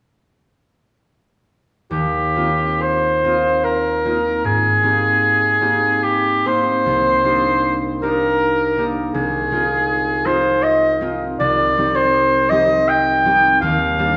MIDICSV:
0, 0, Header, 1, 3, 480
1, 0, Start_track
1, 0, Key_signature, -3, "major"
1, 0, Tempo, 840336
1, 1091, Tempo, 906344
1, 1092, Time_signature, 3, 2, 24, 8
1, 1571, Tempo, 829876
1, 2051, Tempo, 785340
1, 3011, Tempo, 820793
1, 3971, Tempo, 773196
1, 4931, Tempo, 744417
1, 8648, End_track
2, 0, Start_track
2, 0, Title_t, "Oboe"
2, 0, Program_c, 0, 68
2, 1093, Note_on_c, 0, 67, 47
2, 1571, Note_on_c, 0, 72, 47
2, 1579, Note_off_c, 0, 67, 0
2, 2049, Note_on_c, 0, 70, 50
2, 2058, Note_off_c, 0, 72, 0
2, 2540, Note_off_c, 0, 70, 0
2, 2544, Note_on_c, 0, 68, 53
2, 3486, Note_on_c, 0, 67, 46
2, 3494, Note_off_c, 0, 68, 0
2, 3743, Note_on_c, 0, 72, 59
2, 3752, Note_off_c, 0, 67, 0
2, 4588, Note_off_c, 0, 72, 0
2, 4693, Note_on_c, 0, 70, 55
2, 5228, Note_off_c, 0, 70, 0
2, 5402, Note_on_c, 0, 68, 55
2, 6126, Note_on_c, 0, 72, 59
2, 6136, Note_off_c, 0, 68, 0
2, 6365, Note_on_c, 0, 75, 57
2, 6375, Note_off_c, 0, 72, 0
2, 6609, Note_off_c, 0, 75, 0
2, 6861, Note_on_c, 0, 74, 66
2, 7222, Note_on_c, 0, 72, 59
2, 7232, Note_off_c, 0, 74, 0
2, 7572, Note_on_c, 0, 75, 63
2, 7581, Note_off_c, 0, 72, 0
2, 7819, Note_on_c, 0, 79, 75
2, 7829, Note_off_c, 0, 75, 0
2, 8284, Note_off_c, 0, 79, 0
2, 8288, Note_on_c, 0, 77, 62
2, 8648, Note_off_c, 0, 77, 0
2, 8648, End_track
3, 0, Start_track
3, 0, Title_t, "Harp"
3, 0, Program_c, 1, 46
3, 1088, Note_on_c, 1, 39, 33
3, 1328, Note_on_c, 1, 58, 25
3, 1329, Note_on_c, 1, 60, 26
3, 1333, Note_on_c, 1, 63, 26
3, 1334, Note_on_c, 1, 65, 28
3, 1809, Note_off_c, 1, 58, 0
3, 1809, Note_off_c, 1, 60, 0
3, 1813, Note_off_c, 1, 63, 0
3, 1814, Note_on_c, 1, 58, 25
3, 1815, Note_off_c, 1, 65, 0
3, 1818, Note_on_c, 1, 60, 26
3, 1818, Note_on_c, 1, 63, 25
3, 1824, Note_on_c, 1, 65, 26
3, 2293, Note_off_c, 1, 58, 0
3, 2293, Note_off_c, 1, 60, 0
3, 2297, Note_off_c, 1, 63, 0
3, 2298, Note_on_c, 1, 58, 27
3, 2300, Note_off_c, 1, 65, 0
3, 2302, Note_on_c, 1, 60, 25
3, 2304, Note_on_c, 1, 63, 26
3, 2307, Note_on_c, 1, 65, 27
3, 2538, Note_on_c, 1, 44, 36
3, 2559, Note_off_c, 1, 39, 0
3, 2565, Note_off_c, 1, 65, 0
3, 2768, Note_off_c, 1, 58, 0
3, 2769, Note_off_c, 1, 60, 0
3, 2771, Note_off_c, 1, 63, 0
3, 2774, Note_on_c, 1, 58, 27
3, 2778, Note_on_c, 1, 60, 27
3, 2779, Note_on_c, 1, 63, 25
3, 2783, Note_on_c, 1, 67, 28
3, 3233, Note_off_c, 1, 58, 0
3, 3235, Note_off_c, 1, 60, 0
3, 3238, Note_off_c, 1, 63, 0
3, 3239, Note_on_c, 1, 58, 28
3, 3241, Note_off_c, 1, 67, 0
3, 3243, Note_on_c, 1, 60, 27
3, 3245, Note_on_c, 1, 63, 27
3, 3248, Note_on_c, 1, 67, 31
3, 3730, Note_off_c, 1, 58, 0
3, 3732, Note_off_c, 1, 60, 0
3, 3736, Note_off_c, 1, 63, 0
3, 3736, Note_on_c, 1, 58, 27
3, 3737, Note_off_c, 1, 67, 0
3, 3741, Note_on_c, 1, 60, 26
3, 3741, Note_on_c, 1, 63, 27
3, 3746, Note_on_c, 1, 67, 29
3, 3972, Note_on_c, 1, 36, 37
3, 3989, Note_off_c, 1, 44, 0
3, 4201, Note_off_c, 1, 58, 0
3, 4208, Note_off_c, 1, 63, 0
3, 4209, Note_on_c, 1, 58, 27
3, 4211, Note_off_c, 1, 67, 0
3, 4212, Note_on_c, 1, 62, 29
3, 4215, Note_on_c, 1, 63, 29
3, 4218, Note_on_c, 1, 67, 28
3, 4685, Note_off_c, 1, 58, 0
3, 4687, Note_off_c, 1, 62, 0
3, 4691, Note_off_c, 1, 63, 0
3, 4691, Note_on_c, 1, 58, 28
3, 4693, Note_off_c, 1, 67, 0
3, 4697, Note_on_c, 1, 62, 28
3, 4698, Note_on_c, 1, 63, 29
3, 4701, Note_on_c, 1, 67, 30
3, 5163, Note_off_c, 1, 58, 0
3, 5164, Note_off_c, 1, 62, 0
3, 5168, Note_off_c, 1, 63, 0
3, 5169, Note_on_c, 1, 58, 28
3, 5170, Note_off_c, 1, 67, 0
3, 5174, Note_on_c, 1, 62, 27
3, 5176, Note_on_c, 1, 63, 29
3, 5178, Note_on_c, 1, 67, 31
3, 5399, Note_off_c, 1, 36, 0
3, 5407, Note_on_c, 1, 36, 38
3, 5428, Note_off_c, 1, 58, 0
3, 5428, Note_off_c, 1, 62, 0
3, 5431, Note_off_c, 1, 67, 0
3, 5640, Note_off_c, 1, 60, 0
3, 5643, Note_off_c, 1, 63, 0
3, 5644, Note_on_c, 1, 56, 32
3, 5649, Note_on_c, 1, 60, 29
3, 5649, Note_on_c, 1, 63, 30
3, 5654, Note_on_c, 1, 65, 31
3, 6116, Note_off_c, 1, 56, 0
3, 6118, Note_off_c, 1, 60, 0
3, 6122, Note_on_c, 1, 56, 31
3, 6124, Note_off_c, 1, 63, 0
3, 6125, Note_off_c, 1, 65, 0
3, 6128, Note_on_c, 1, 60, 31
3, 6130, Note_on_c, 1, 63, 31
3, 6135, Note_on_c, 1, 65, 35
3, 6601, Note_off_c, 1, 56, 0
3, 6604, Note_off_c, 1, 60, 0
3, 6606, Note_off_c, 1, 63, 0
3, 6609, Note_on_c, 1, 56, 31
3, 6610, Note_off_c, 1, 65, 0
3, 6610, Note_on_c, 1, 60, 31
3, 6615, Note_on_c, 1, 63, 32
3, 6618, Note_on_c, 1, 65, 35
3, 6853, Note_off_c, 1, 36, 0
3, 6860, Note_on_c, 1, 36, 44
3, 6878, Note_off_c, 1, 56, 0
3, 6883, Note_off_c, 1, 65, 0
3, 7099, Note_off_c, 1, 60, 0
3, 7101, Note_off_c, 1, 63, 0
3, 7103, Note_on_c, 1, 55, 34
3, 7105, Note_on_c, 1, 60, 34
3, 7110, Note_on_c, 1, 63, 33
3, 7112, Note_on_c, 1, 67, 36
3, 7571, Note_off_c, 1, 55, 0
3, 7574, Note_off_c, 1, 60, 0
3, 7577, Note_off_c, 1, 63, 0
3, 7579, Note_on_c, 1, 55, 33
3, 7579, Note_on_c, 1, 60, 36
3, 7580, Note_off_c, 1, 67, 0
3, 7587, Note_on_c, 1, 63, 34
3, 7588, Note_on_c, 1, 67, 38
3, 8049, Note_off_c, 1, 55, 0
3, 8052, Note_off_c, 1, 60, 0
3, 8053, Note_off_c, 1, 63, 0
3, 8056, Note_off_c, 1, 67, 0
3, 8056, Note_on_c, 1, 55, 35
3, 8057, Note_on_c, 1, 60, 34
3, 8063, Note_on_c, 1, 63, 34
3, 8064, Note_on_c, 1, 67, 39
3, 8293, Note_on_c, 1, 39, 46
3, 8311, Note_off_c, 1, 36, 0
3, 8312, Note_off_c, 1, 60, 0
3, 8521, Note_off_c, 1, 55, 0
3, 8527, Note_on_c, 1, 55, 33
3, 8530, Note_off_c, 1, 67, 0
3, 8533, Note_on_c, 1, 58, 35
3, 8535, Note_on_c, 1, 62, 33
3, 8538, Note_on_c, 1, 67, 37
3, 8648, Note_off_c, 1, 39, 0
3, 8648, Note_off_c, 1, 55, 0
3, 8648, Note_off_c, 1, 58, 0
3, 8648, Note_off_c, 1, 62, 0
3, 8648, Note_off_c, 1, 63, 0
3, 8648, Note_off_c, 1, 67, 0
3, 8648, End_track
0, 0, End_of_file